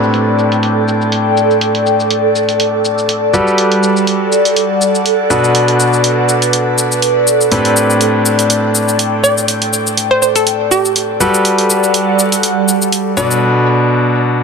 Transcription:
Already playing: grand piano A2 C4 D4 G4 A4 B4, analog synth pad A4 D5
0.02 analog synth pad G5, shaker
0.14 closed hi-hat, shaker
0.39 shaker
0.52 closed hi-hat, shaker
0.63 closed hi-hat, shaker
0.88 shaker
1.02 shaker
1.12 closed hi-hat, shaker
1.37 shaker
1.51 shaker
1.61 closed hi-hat, shaker
1.75 closed hi-hat
1.86 shaker
2.00 shaker
2.11 closed hi-hat, shaker
2.36 shaker
2.49 closed hi-hat, shaker
2.60 closed hi-hat, shaker
2.85 shaker
2.98 shaker
3.09 closed hi-hat, shaker
3.34 grand piano G3 F#4 G4 A4 B4, analog synth pad G3, shaker
3.48 shaker
3.58 closed hi-hat, shaker
3.72 closed hi-hat
3.83 shaker
3.97 shaker
4.07 closed hi-hat, shaker
4.15 analog synth pad F#5
4.32 shaker
4.45 closed hi-hat, shaker
4.56 closed hi-hat, shaker
4.82 shaker
4.95 shaker
5.06 closed hi-hat, shaker
5.30 grand piano B2 D4 F#4 A4 B4, analog synth pad B4, shaker
5.44 shaker
5.55 closed hi-hat, shaker
5.68 closed hi-hat
5.80 shaker
5.93 shaker
6.04 closed hi-hat, shaker
6.29 shaker
6.42 closed hi-hat, shaker
6.53 closed hi-hat, shaker
6.78 shaker
6.92 shaker
7.02 closed hi-hat, shaker
7.27 shaker
7.41 shaker
7.52 grand piano A2 C4 D4 G4 A4 B4, closed hi-hat, shaker
7.65 closed hi-hat
7.77 shaker
7.90 shaker
8.01 closed hi-hat, shaker
8.26 shaker
8.33 analog synth pad G5
8.39 closed hi-hat, shaker
8.50 closed hi-hat, shaker
8.75 shaker
8.89 shaker
8.99 closed hi-hat, shaker
9.24 synth pluck D5, shaker
9.38 shaker
9.48 closed hi-hat, shaker
9.62 closed hi-hat
9.73 shaker
9.87 shaker
9.97 closed hi-hat, shaker
10.11 synth pluck C5
10.22 synth pluck C5, shaker
10.36 synth pluck A4, closed hi-hat, shaker
10.47 closed hi-hat, shaker
10.71 synth pluck G4, shaker
10.85 shaker
10.96 closed hi-hat, shaker
11.20 analog synth pad G3, grand piano G3 F#4 G4 A4 B4, shaker
11.25 analog synth pad A4
11.34 shaker
11.41 analog synth pad F#5, closed hi-hat
11.45 shaker
11.53 analog synth pad D5
11.58 closed hi-hat
11.70 shaker
11.84 shaker
11.94 closed hi-hat, shaker
12.19 shaker
12.32 closed hi-hat, shaker
12.43 closed hi-hat, shaker
12.68 shaker
12.82 shaker
12.92 closed hi-hat, shaker
13.17 grand piano B2 D4 F#4 A4 B4, synth pluck D5, shaker
13.31 shaker

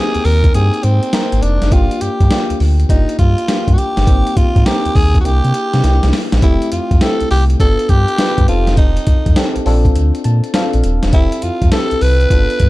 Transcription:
Already playing: fm electric piano A#3 C4 D#4 G4, tenor saxophone G#4
0.15 sub bass D#2, closed hi-hat
0.25 sub bass D#2, tenor saxophone A#4, open hi-hat
0.44 kick, closed hi-hat
0.54 sub bass G2, fm electric piano A#3 C4 D#4 G4, tenor saxophone G#4, closed hi-hat
0.74 closed hi-hat
0.83 sub bass G#2, tenor saxophone C4, closed hi-hat
1.03 closed hi-hat
1.13 fm electric piano A#3 C4 D#4 A#4, snare, closed hi-hat
1.32 sub bass G#1, closed hi-hat
1.43 sub bass F1, tenor saxophone D4, closed hi-hat
1.62 sub bass F#1, snare, closed hi-hat
1.71 sub bass G1, fm electric piano A#3 D4 F4 G4, tenor saxophone F4, kick, closed hi-hat
1.91 closed hi-hat
2.01 sub bass G2, tenor saxophone G4, closed hi-hat
2.20 sub bass G2, kick, closed hi-hat
2.30 fm electric piano A#3 D4 F4 G4, snare, closed hi-hat
2.50 sub bass D2, closed hi-hat
2.60 sub bass D2, open hi-hat
2.80 closed hi-hat
2.89 sub bass G1, fm electric piano A#3 D4 F4 G4, tenor saxophone D#4, kick, closed hi-hat
3.09 closed hi-hat
3.19 sub bass G2, tenor saxophone F4, kick, closed hi-hat
3.38 closed hi-hat
3.48 fm electric piano A#3 D4 F4 G4, snare, closed hi-hat
3.68 sub bass G2, kick, closed hi-hat
3.74 tenor saxophone F#4
3.78 tenor saxophone G4, closed hi-hat
3.97 sub bass G1, snare, closed hi-hat
4.07 sub bass G#1, fm electric piano A#3 C4 D#4 G4, kick, closed hi-hat
4.27 closed hi-hat
4.37 sub bass G#2, tenor saxophone F4, kick, closed hi-hat
4.56 sub bass G#2, kick, closed hi-hat
4.66 fm electric piano A#3 C4 D#4 A#4, tenor saxophone G4, snare, closed hi-hat
4.85 sub bass D#2, closed hi-hat
4.95 sub bass D#2, tenor saxophone G#4, kick, open hi-hat
5.15 kick, closed hi-hat
5.21 fm electric piano A#3, tenor saxophone F#4
5.25 sub bass C2, fm electric piano D4 E4 G4, tenor saxophone G4, closed hi-hat
5.44 sub bass C3, closed hi-hat
5.54 closed hi-hat
5.73 sub bass C3, snare, closed hi-hat
5.83 sub bass C2, fm electric piano A#3 D4 E4 G4, snare, closed hi-hat
6.03 sub bass C2, snare, closed hi-hat
6.13 snare, open hi-hat
6.32 sub bass A#1, snare, closed hi-hat
6.42 sub bass F1, fm electric piano A3 C4 E4 G4, tenor saxophone E4, kick, closed hi-hat
6.62 closed hi-hat
6.72 sub bass F2, tenor saxophone F4, closed hi-hat
6.91 sub bass F2, kick, closed hi-hat
7.01 fm electric piano A3 C4 E4 G4, tenor saxophone A4, snare, closed hi-hat
7.21 sub bass C2, closed hi-hat
7.31 sub bass C2, tenor saxophone G4, open hi-hat
7.50 closed hi-hat
7.60 sub bass G1, fm electric piano B3 D4 F4 A4, tenor saxophone A4, kick, closed hi-hat
7.79 closed hi-hat
7.89 sub bass G2, tenor saxophone G4, kick, closed hi-hat
8.08 closed hi-hat
8.18 fm electric piano B3 D4 F4 B4, snare, closed hi-hat
8.38 sub bass G2, kick, closed hi-hat
8.48 sub bass F1, fm electric piano C4 D#4 G4 A4, tenor saxophone F4, closed hi-hat
8.67 snare, closed hi-hat
8.77 tenor saxophone D#4, kick, closed hi-hat
8.97 closed hi-hat
9.07 sub bass F2, kick, closed hi-hat
9.26 sub bass F2, kick, closed hi-hat
9.36 fm electric piano C4 D#4 G4 A4, snare, closed hi-hat
9.56 sub bass A#1, closed hi-hat
9.65 sub bass A#1, fm electric piano C4 D4 F4 A4, open hi-hat
9.85 kick, closed hi-hat
9.95 sub bass D2, closed hi-hat
10.15 closed hi-hat
10.24 sub bass A#2, fm electric piano A5, closed hi-hat
10.44 closed hi-hat
10.54 fm electric piano C4 D4 F4 A4 F5, snare, closed hi-hat
10.73 sub bass A#1, closed hi-hat
10.84 sub bass D#1, closed hi-hat
11.03 sub bass E1, snare, closed hi-hat
11.13 sub bass F1, fm electric piano C4 E4 G4 A4, tenor saxophone E4, kick, closed hi-hat
11.32 closed hi-hat
11.42 sub bass F2, tenor saxophone F4, closed hi-hat
11.62 sub bass F2, kick, closed hi-hat
11.72 fm electric piano C4 E4 G4 A4, tenor saxophone A4, snare, closed hi-hat
11.91 sub bass C2, closed hi-hat
12.01 sub bass C2, tenor saxophone B4, open hi-hat
12.21 closed hi-hat
12.30 sub bass G1, fm electric piano B3 D4 F4 A4, kick, closed hi-hat
12.50 closed hi-hat
12.60 sub bass G2, kick, closed hi-hat

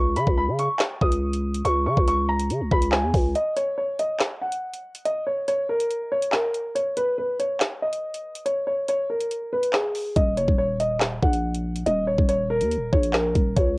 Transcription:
Already playing: 808-style bass C#2, grand piano C#6
0.16 808-style bass C#3, grand piano B5, closed hi-hat
0.27 808-style bass C#2, kick
0.37 grand piano B5
0.48 808-style bass C#3
0.59 grand piano C#6, closed hi-hat
0.80 snare, clap, closed hi-hat
1.01 808-style bass C#2, grand piano D#6, kick
1.12 closed hi-hat
1.33 closed hi-hat
1.54 closed hi-hat
1.65 808-style bass C#2, grand piano C#6, closed hi-hat
1.86 808-style bass C#3, grand piano C#6
1.97 808-style bass C#2, kick
2.08 grand piano C#6, closed hi-hat
2.29 grand piano A#5
2.40 closed hi-hat
2.50 808-style bass C#3, closed hi-hat
2.61 808-style bass C#2
2.71 808-style bass C#2, grand piano B5, kick
2.82 closed hi-hat
2.92 grand piano G#5, cross-stick, snare, clap
3.03 808-style bass E2
3.14 808-style bass C#2, kick, open hi-hat
3.35 grand piano D#5, closed hi-hat
3.56 grand piano C#5, closed hi-hat
3.78 grand piano C#5
3.99 grand piano D#5, closed hi-hat
4.20 snare, clap, closed hi-hat
4.42 grand piano F#5
4.52 closed hi-hat
4.74 closed hi-hat
4.95 closed hi-hat
5.05 grand piano D#5, closed hi-hat
5.27 grand piano C#5
5.48 grand piano C#5, closed hi-hat
5.69 grand piano A#4
5.80 closed hi-hat
5.91 closed hi-hat
6.12 grand piano C#5
6.22 closed hi-hat
6.33 grand piano A#4, snare, clap
6.54 closed hi-hat
6.75 grand piano C#5, closed hi-hat
6.97 grand piano B4, closed hi-hat
7.18 grand piano B4
7.39 grand piano C#5, closed hi-hat
7.60 snare, clap, closed hi-hat
7.82 grand piano D#5
7.93 closed hi-hat
8.14 closed hi-hat
8.35 closed hi-hat
8.46 grand piano C#5, closed hi-hat
8.67 grand piano C#5
8.88 grand piano C#5, closed hi-hat
9.10 grand piano A#4
9.20 closed hi-hat
9.31 closed hi-hat
9.53 grand piano B4
9.63 closed hi-hat
9.73 grand piano G#4, cross-stick, snare, clap
9.95 open hi-hat
10.16 808-style bass D#1, grand piano D#5, kick, closed hi-hat
10.37 808-style bass F#1, grand piano C#5, closed hi-hat
10.48 808-style bass D#1, kick
10.58 grand piano C#5
10.80 grand piano D#5, closed hi-hat
11.01 snare, clap, closed hi-hat
11.22 808-style bass A#1, grand piano F#5, kick
11.33 closed hi-hat
11.54 closed hi-hat
11.76 closed hi-hat
11.86 808-style bass D#1, grand piano D#5, closed hi-hat
12.07 grand piano C#5
12.18 808-style bass D#1, kick
12.29 grand piano C#5, closed hi-hat
12.50 grand piano A#4
12.61 808-style bass D#2, closed hi-hat
12.71 closed hi-hat
12.77 808-style bass D#1
12.92 808-style bass A#1, grand piano C#5, kick
13.03 closed hi-hat
13.13 grand piano A#4, cross-stick, snare, clap
13.35 808-style bass D#1, kick, closed hi-hat
13.56 808-style bass C#2, grand piano C#5, kick, closed hi-hat

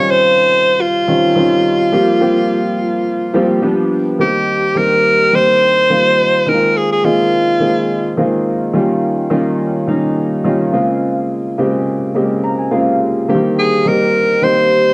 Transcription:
Already playing: grand piano D#3 G3 C4 C#4 F4, alto saxophone C#5
0.11 alto saxophone C5
0.81 alto saxophone F4
1.08 grand piano D#3 G3 C4 C#4 F4
1.35 grand piano D#3 G3 C4 C#4 F4
1.92 grand piano F3 G3 A#3 C4 G4
2.20 grand piano F3 G3 A#3 C4 G4
3.34 grand piano F3 G3 A#3 C4 G4
3.62 grand piano F3 G3 B3 D4 G4
4.19 grand piano D#3 G3 A#3 C4 G4, alto saxophone G4
4.75 grand piano D#3 G3 A#3 C4 G4, alto saxophone A#4
5.32 grand piano D#3 G3 A#3 C4 G4, alto saxophone C5
5.90 grand piano D#3 G3 A#3 C4 F4
6.46 grand piano D#3 G#3 A#3 C4 D#4, alto saxophone A#4
6.54 grand piano F4
6.77 alto saxophone G#4
6.92 alto saxophone G#4
7.04 grand piano D#3 G#3 A#3 C4 G#4, alto saxophone F4
7.60 grand piano D#3 G#3 A#3 C4 G#4
8.17 grand piano D#3 G#3 A#3 C4 F4
8.73 grand piano D#3 G3 A#3 C#4 F4
9.30 grand piano D#3 G3 A#3 C#4 F4
9.87 grand piano D#3 G3 A#3 C#4 D#4
10.44 grand piano D#3 G3 A#3 C#4 F4
10.72 grand piano C#3 G#3 A#3 C4 F4
11.58 grand piano C#3 G#3 A#3 C4 G4
12.14 grand piano C#3 G#3 A#3 C4 G4
12.44 grand piano A#5
12.59 grand piano G#5
12.71 grand piano C#3 G#3 A#3 C4 F4 F5
13.28 grand piano D3 G3 A#3 C4 G4
13.35 grand piano D#3
13.59 alto saxophone G#4
13.85 grand piano D#3 G3 A#3 C4 G4, alto saxophone A#4
14.42 grand piano D#3 G3 A#3 C4 G4, alto saxophone C5

